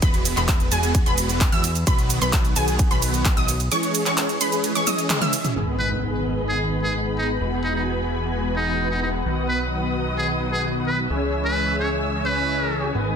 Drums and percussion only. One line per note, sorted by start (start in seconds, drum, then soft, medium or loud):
0.02 kick loud
0.02 closed hi-hat medium
0.02 ride medium
0.02 shaker soft
0.14 closed hi-hat soft
0.14 shaker soft
0.25 open hi-hat loud
0.25 ride medium
0.25 shaker medium
0.37 clap soft
0.37 closed hi-hat soft
0.37 shaker soft
0.48 kick loud
0.48 clap loud
0.48 closed hi-hat medium
0.48 ride medium
0.48 shaker soft
0.60 closed hi-hat soft
0.60 shaker soft
0.72 open hi-hat medium
0.72 ride medium
0.72 shaker medium
0.83 closed hi-hat soft
0.83 shaker soft
0.95 kick loud
0.95 closed hi-hat medium
0.95 ride medium
0.95 shaker soft
1.06 closed hi-hat soft
1.06 shaker soft
1.18 open hi-hat loud
1.18 ride medium
1.18 shaker medium
1.29 closed hi-hat soft
1.29 shaker soft
1.41 kick loud
1.41 clap loud
1.41 closed hi-hat medium
1.41 ride medium
1.41 shaker soft
1.52 closed hi-hat soft
1.52 shaker soft
1.64 open hi-hat medium
1.64 ride medium
1.64 shaker medium
1.75 closed hi-hat soft
1.75 shaker soft
1.87 kick loud
1.87 closed hi-hat medium
1.87 ride medium
1.87 shaker soft
1.99 closed hi-hat soft
1.99 shaker soft
2.10 open hi-hat loud
2.10 ride medium
2.10 shaker medium
2.22 closed hi-hat soft
2.22 shaker soft
2.33 kick loud
2.33 clap loud
2.33 closed hi-hat medium
2.33 ride medium
2.33 shaker soft
2.45 closed hi-hat soft
2.45 shaker soft
2.56 open hi-hat medium
2.56 ride medium
2.56 shaker medium
2.68 closed hi-hat soft
2.68 shaker soft
2.79 kick loud
2.79 closed hi-hat medium
2.79 ride medium
2.79 shaker soft
2.91 closed hi-hat soft
2.91 shaker soft
3.02 open hi-hat loud
3.02 ride medium
3.02 shaker medium
3.14 closed hi-hat soft
3.14 shaker soft
3.25 kick loud
3.25 clap loud
3.25 closed hi-hat medium
3.25 ride medium
3.25 shaker soft
3.37 closed hi-hat soft
3.37 shaker soft
3.48 open hi-hat medium
3.48 ride medium
3.48 shaker medium
3.60 closed hi-hat soft
3.60 shaker soft
3.72 closed hi-hat medium
3.72 ride medium
3.72 shaker soft
3.83 closed hi-hat soft
3.83 shaker soft
3.95 open hi-hat loud
3.95 ride medium
3.95 shaker medium
4.06 clap soft
4.06 closed hi-hat soft
4.06 shaker soft
4.18 clap loud
4.18 closed hi-hat medium
4.18 ride medium
4.18 shaker soft
4.29 closed hi-hat soft
4.29 shaker soft
4.41 open hi-hat medium
4.41 ride medium
4.41 shaker medium
4.52 closed hi-hat soft
4.52 shaker soft
4.64 closed hi-hat medium
4.64 ride medium
4.64 shaker soft
4.75 closed hi-hat soft
4.75 shaker soft
4.87 open hi-hat loud
4.87 high tom medium
4.87 ride medium
4.87 shaker medium
4.98 closed hi-hat soft
4.98 shaker soft
5.10 clap loud
5.10 closed hi-hat medium
5.10 mid tom medium
5.10 ride medium
5.10 shaker soft
5.22 closed hi-hat soft
5.22 mid tom medium
5.22 shaker soft
5.33 open hi-hat medium
5.33 ride medium
5.33 shaker medium
5.45 closed hi-hat soft
5.45 mid tom medium
5.45 shaker soft
6.25 shaker medium
8.10 shaker medium
9.26 shaker soft
9.49 shaker medium
9.72 shaker soft
9.95 shaker medium
10.06 shaker soft
10.41 shaker medium
10.87 shaker medium
11.10 shaker soft
11.22 shaker soft
11.33 shaker medium
11.79 shaker medium
11.91 shaker soft
12.02 shaker soft
12.14 shaker soft
12.25 shaker medium
12.72 shaker medium
12.83 shaker soft
12.95 shaker soft
13.06 shaker soft